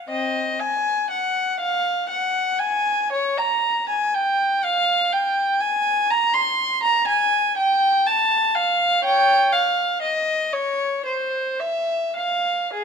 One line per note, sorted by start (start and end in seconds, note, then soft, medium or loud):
0.09 0.56 C4 medium
0.09 0.59 D#5 medium
0.60 1.10 G#5 medium
1.10 1.58 F#5 medium
1.60 2.08 F5 medium
2.09 2.59 F#5 medium
2.59 3.12 G#5 loud
3.12 3.39 C#5 medium
3.38 3.90 A#5 medium
3.89 4.14 G#5 medium
4.14 4.64 G5 medium
4.64 5.13 F5 loud
5.12 5.62 G5 medium
5.60 6.10 G#5 loud
6.11 6.35 A#5 loud
6.34 6.83 C6 loud
6.83 7.07 A#5 loud
7.07 7.56 G#5 loud
7.57 8.06 G5 loud
8.06 8.56 A5 loud
8.55 9.04 F5 loud
9.04 9.49 C#5 medium
9.04 9.52 G5 loud
9.52 10.03 F5 medium
10.02 10.52 D#5 medium
10.53 11.06 C#5 medium
11.06 11.58 C5 medium
11.60 12.15 E5 medium
12.16 12.71 F5 medium
12.73 12.84 G#4 medium